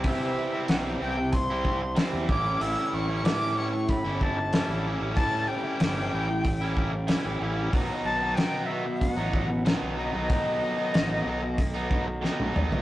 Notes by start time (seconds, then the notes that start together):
Already playing: E4 G4 C5
0.04 C3 E3 G3 C4 E5, kick, open hi-hat
0.09 E4
0.53 G3 C4 E4
0.68 B1 C3 E3 G3 C4 E4 F#5, snare, open hi-hat
1.00 C2 E3 G3 C4 E4 G5
1.18 muted overdriven electric guitar stroke
1.33 C6, kick, open hi-hat
1.50 G3 C4 E4
1.65 kick
1.82 muted overdriven electric guitar stroke
1.96 C3 E3 G3 C4 E4, snare, open hi-hat
2.13 E2
2.29 A1 A2 E3 G3 C#4 E4 A4 D6, kick
2.45 G3 C#4 E4
2.60 A1 A2 E3 G3 C#4 E4 E6, open hi-hat
2.93 A1 C#6
3.08 G3 C#4 E4
3.23 A2 E3 G3 C#4 E4 D6, snare, open hi-hat
3.57 E3 G3 C#4 E4 C#6
3.73 muted overdriven electric guitar stroke
3.89 B5, kick, open hi-hat
4.05 G1 G3 C#4 E4
4.21 A5, kick
4.37 muted overdriven electric guitar stroke
4.53 A2 E3 G3 C#4 E4, snare, open hi-hat
4.68 A1
4.85 E3 G3 C#4 E4
5.00 A1 G3 C#4 E4
5.15 A2 E3 G3 C#4 E4 A5, kick, open hi-hat
5.48 G5
5.64 G3 C#4 E4
5.80 G1 A2 E3 G3 C#4 E4, snare, open hi-hat
6.12 A1 E3 G3 C#4 E4
6.29 muted overdriven electric guitar stroke
6.45 kick, open hi-hat
6.61 G3 C#4 E4
6.77 kick
6.93 muted overdriven electric guitar stroke
7.07 A2 E3 G3 C#4 E4, snare, open hi-hat
7.25 A1
7.40 A1 E3 G3 C#4 E4
7.57 G3 C#4 E4
7.73 B1 B2 D#3 F#3 B3 D#4 B4, kick, open hi-hat
8.05 B1 A5
8.23 F#3 B3 D#4
8.35 B2 D#3 G5, snare, open hi-hat
8.39 F#3 B3 D#4
8.66 E5
8.70 D#3 F#3 B3 D#4
8.85 muted overdriven electric guitar stroke
8.97 F#5
9.01 kick, open hi-hat
9.16 A1 F#3 B3 D#4
9.33 kick
9.49 muted overdriven electric guitar stroke
9.65 B2 D#3 F#3 B3 D#4, snare, open hi-hat
9.82 B1
9.96 D#3 F#3 B3 D#4 D#5
10.13 B1 F#3 B3 D#4
10.29 B2 D#3 F#3 B3 D#4 A4, kick, open hi-hat
10.78 F#3 B3 D#4
10.94 A1 B2 D#3 F#3 B3 D#4, snare, open hi-hat
11.25 B1 D#3 F#3 B3 D#4
11.43 muted overdriven electric guitar stroke
11.58 kick, open hi-hat
11.74 F#3 B3 D#4
11.91 kick
12.07 muted overdriven electric guitar stroke
12.22 B2 D#3 F#3 B3 D#4, snare
12.40 B1, high tom
12.54 B1 D#3 F#3 B3 D#4, mid tom
12.70 F#3 B3 D#4, floor tom